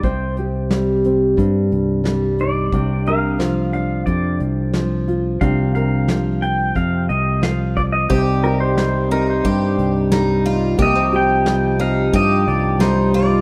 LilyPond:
<<
  \new Staff \with { instrumentName = "Pedal steel guitar" } { \time 4/4 \key c \minor \tempo 4 = 89 c''8 r2. d''8~ | d''8 f''4 f''8 d''8 r4. | f''8 f''4 g''8 f''8 ees''8 f''8 d''16 ees''16 | c''8 bes'16 c''16 c''8 bes'16 c''4 r4 r16 |
ees''8 g''4 f''8 ees''8 d''8 c''8 d''8 | }
  \new Staff \with { instrumentName = "Twelve-string acoustic guitar" } { \time 4/4 \key c \minor r1 | r1 | r1 | g'4 r8 ees'8 g'4 ees'8 f'8 |
g'4 r8 ees'8 g'4 ees'8 f'8 | }
  \new Staff \with { instrumentName = "Nylon-string guitar" } { \time 4/4 \key c \minor << { <c' g'>8 g'4 c'2 ees'8 | d'8 bes'4 d'2 f'8 | d'8 bes'2. f'8 | c'8 g'4 c'2 ees'8 |
bes16 c'16 g'4 c'2 ees'8 | } \\ { c4 g4 g,4 g4 | c4 f4 c4 f4 | c4 f4 c4 f4 | c4 g4 g,4 g4 |
c4 g4 g,4 g4 | } >> }
  \new Staff \with { instrumentName = "Harmonium" } { \clef bass \time 4/4 \key c \minor << { r1 | r1 | r1 | <c ees'>1~ |
<c ees'>1 | } \\ { r1 | r1 | r1 | g1 |
f1 | } >> }
  \new Staff \with { instrumentName = "Fingered electric bass" } { \clef bass \time 4/4 \key c \minor c,2 g,8 c,4. | c,2 f,8 c,4. | c,2 f,8 c,4. | c,2 g,8 c,4. |
c,2 g,8 c,4. | }
  \new DrumStaff \with { instrumentName = "Drums" } \drummode { \time 4/4 <hh bd>8 hh8 <hh sn>8 hh8 <hh bd>8 hh8 <hh sn>8 hh8 | <hh bd>8 hh8 <hh sn>8 hh8 <hh bd>8 hh8 <hh sn>8 hh8 | <hh bd>8 hh8 <hh sn>8 hh8 <hh bd>8 hh8 <hh sn>8 <hh bd>8 | <hh bd>8 hh8 <hh sn>8 hh8 <hh bd>8 hh8 <hh sn>8 hh8 |
<hh bd>8 hh8 <hh sn>8 hh8 <hh bd>8 hh8 <hh sn>8 hh8 | }
>>